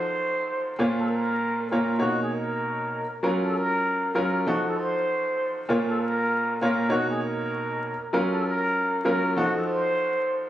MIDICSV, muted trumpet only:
0, 0, Header, 1, 2, 480
1, 0, Start_track
1, 0, Key_signature, -5, "minor"
1, 0, Tempo, 612245
1, 620, Time_signature, 4, 2, 24, 8
1, 8228, End_track
2, 0, Start_track
2, 0, Title_t, "Muted trumpet"
2, 0, Program_c, 0, 59
2, 0, Note_on_c, 0, 72, 78
2, 588, Note_off_c, 0, 72, 0
2, 778, Note_on_c, 0, 69, 77
2, 845, Note_off_c, 0, 69, 0
2, 850, Note_on_c, 0, 70, 79
2, 1306, Note_off_c, 0, 70, 0
2, 1328, Note_on_c, 0, 70, 74
2, 1550, Note_off_c, 0, 70, 0
2, 1574, Note_on_c, 0, 66, 90
2, 1710, Note_off_c, 0, 66, 0
2, 1744, Note_on_c, 0, 68, 64
2, 1820, Note_off_c, 0, 68, 0
2, 1831, Note_on_c, 0, 70, 75
2, 2514, Note_off_c, 0, 70, 0
2, 2693, Note_on_c, 0, 69, 73
2, 2773, Note_off_c, 0, 69, 0
2, 2793, Note_on_c, 0, 70, 83
2, 3238, Note_off_c, 0, 70, 0
2, 3260, Note_on_c, 0, 70, 70
2, 3476, Note_off_c, 0, 70, 0
2, 3505, Note_on_c, 0, 66, 90
2, 3636, Note_off_c, 0, 66, 0
2, 3661, Note_on_c, 0, 69, 70
2, 3732, Note_off_c, 0, 69, 0
2, 3737, Note_on_c, 0, 72, 75
2, 4427, Note_off_c, 0, 72, 0
2, 4615, Note_on_c, 0, 69, 78
2, 4694, Note_off_c, 0, 69, 0
2, 4703, Note_on_c, 0, 70, 90
2, 5153, Note_off_c, 0, 70, 0
2, 5183, Note_on_c, 0, 70, 81
2, 5398, Note_off_c, 0, 70, 0
2, 5420, Note_on_c, 0, 66, 94
2, 5554, Note_off_c, 0, 66, 0
2, 5569, Note_on_c, 0, 68, 75
2, 5651, Note_off_c, 0, 68, 0
2, 5667, Note_on_c, 0, 70, 79
2, 6352, Note_off_c, 0, 70, 0
2, 6520, Note_on_c, 0, 69, 77
2, 6606, Note_off_c, 0, 69, 0
2, 6623, Note_on_c, 0, 70, 84
2, 7073, Note_off_c, 0, 70, 0
2, 7111, Note_on_c, 0, 70, 84
2, 7322, Note_off_c, 0, 70, 0
2, 7337, Note_on_c, 0, 66, 94
2, 7472, Note_off_c, 0, 66, 0
2, 7497, Note_on_c, 0, 69, 71
2, 7573, Note_off_c, 0, 69, 0
2, 7577, Note_on_c, 0, 72, 81
2, 8228, Note_off_c, 0, 72, 0
2, 8228, End_track
0, 0, End_of_file